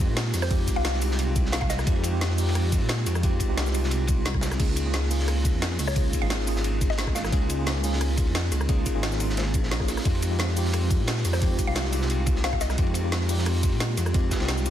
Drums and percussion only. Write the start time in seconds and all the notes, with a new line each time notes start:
0.17 snare, closed hi-hat, ride
0.26 snare
0.34 snare, closed hi-hat, open hi-hat, ride, cabasa
0.42 cross-stick, snare, cabasa
0.51 kick, closed hi-hat, ride
0.68 kick, closed hi-hat, ride, cabasa
0.85 snare, closed hi-hat, ride
0.94 snare
1.02 open hi-hat, ride, cabasa
1.11 snare
1.19 closed hi-hat, ride
1.36 kick, closed hi-hat, ride, cabasa
1.45 snare
1.52 snare, closed hi-hat, ride
1.62 kick, cross-stick
1.70 snare, closed hi-hat, ride, cabasa
1.79 cross-stick, snare, cabasa
1.87 kick, closed hi-hat, ride
1.96 ride
2.03 closed hi-hat, ride, cabasa
2.21 snare, closed hi-hat, ride
2.30 snare
2.38 closed hi-hat, open hi-hat, ride, cabasa
2.47 snare
2.55 cross-stick, closed hi-hat, ride
2.72 kick, closed hi-hat, ride, cabasa
2.81 ride
2.89 snare, closed hi-hat, ride
3.06 snare, closed hi-hat, ride, cabasa
3.15 cross-stick, cabasa
3.23 kick, closed hi-hat, ride
3.40 kick, closed hi-hat, ride, cabasa
3.57 snare, closed hi-hat, ride
3.66 snare, cabasa
3.75 open hi-hat, ride, cabasa
3.83 snare
3.91 closed hi-hat, ride
4.07 kick, closed hi-hat, ride, cabasa
4.25 snare, closed hi-hat, ride
4.34 kick, cross-stick
4.41 snare, closed hi-hat, ride, cabasa
4.51 cross-stick, snare, cabasa
4.60 kick, closed hi-hat, ride, crash
4.69 ride
4.76 closed hi-hat, ride, cabasa
4.93 snare, closed hi-hat, ride
5.03 snare
5.11 closed hi-hat, open hi-hat, ride, cabasa
5.20 snare
5.28 cross-stick, closed hi-hat, ride
5.45 kick, closed hi-hat, ride, cabasa
5.62 snare, closed hi-hat, ride
5.71 snare
5.79 snare, closed hi-hat, open hi-hat, ride, cabasa
5.88 cross-stick, snare, cabasa
5.96 kick, closed hi-hat, ride
6.13 kick, closed hi-hat, ride, cabasa
6.30 snare, closed hi-hat, ride
6.39 snare
6.47 open hi-hat, ride, cabasa
6.56 snare
6.64 closed hi-hat, ride
6.81 kick, closed hi-hat, ride, cabasa
6.90 snare
6.98 snare, closed hi-hat, ride
7.07 kick, cross-stick
7.16 snare, closed hi-hat, ride, cabasa
7.25 cross-stick, snare, cabasa
7.32 kick, closed hi-hat, ride
7.41 ride
7.49 closed hi-hat, ride, cabasa
7.66 snare, closed hi-hat, ride
7.76 snare
7.84 closed hi-hat, open hi-hat, ride, cabasa
7.92 snare
8.01 cross-stick, closed hi-hat, ride
8.17 kick, closed hi-hat, ride, cabasa
8.27 ride
8.35 snare, closed hi-hat, ride
8.51 snare, closed hi-hat, ride, cabasa
8.61 cross-stick, cabasa
8.69 kick, closed hi-hat, ride
8.86 kick, closed hi-hat, ride, cabasa
9.03 snare, closed hi-hat, ride
9.12 snare, cabasa
9.20 open hi-hat, ride, cabasa
9.29 snare
9.37 snare, closed hi-hat, ride
9.54 kick, closed hi-hat, ride, cabasa
9.63 snare
9.71 snare, closed hi-hat, ride
9.80 kick, cross-stick, snare
9.88 snare, closed hi-hat, open hi-hat, ride, cabasa
9.97 cross-stick, snare, cabasa
10.05 kick, closed hi-hat, ride
10.15 ride
10.22 closed hi-hat, ride, cabasa
10.39 snare, closed hi-hat, ride
10.47 snare
10.56 closed hi-hat, open hi-hat, ride, cabasa
10.65 snare
10.73 cross-stick, closed hi-hat, ride
10.90 kick, closed hi-hat, ride, cabasa
11.07 snare, closed hi-hat, ride
11.17 snare
11.25 snare, closed hi-hat, open hi-hat, ride, cabasa
11.33 cross-stick, snare, cabasa
11.42 kick, closed hi-hat, ride
11.59 kick, closed hi-hat, ride, cabasa
11.75 snare, closed hi-hat, ride
11.85 snare
11.92 open hi-hat, ride, cabasa
12.01 snare
12.10 closed hi-hat, ride
12.26 kick, closed hi-hat, ride, cabasa
12.35 snare
12.44 snare, closed hi-hat, ride
12.53 kick, cross-stick
12.61 snare, closed hi-hat, ride, cabasa
12.70 cross-stick, snare, cabasa
12.78 kick, closed hi-hat, ride
12.86 ride
12.94 closed hi-hat, ride, cabasa
13.12 snare, closed hi-hat, ride
13.21 snare
13.29 closed hi-hat, open hi-hat, ride, cabasa
13.38 snare
13.46 cross-stick, closed hi-hat, ride
13.63 kick, closed hi-hat, ride, cabasa
13.72 ride
13.80 snare, closed hi-hat, ride
13.97 snare, closed hi-hat, ride, cabasa
14.06 cross-stick, cabasa
14.14 kick, closed hi-hat, ride
14.31 kick, snare, closed hi-hat, ride, cabasa
14.36 snare, ride
14.40 snare, ride
14.44 snare, ride
14.48 snare, closed hi-hat, ride
14.57 snare, cabasa
14.66 open hi-hat, ride, cabasa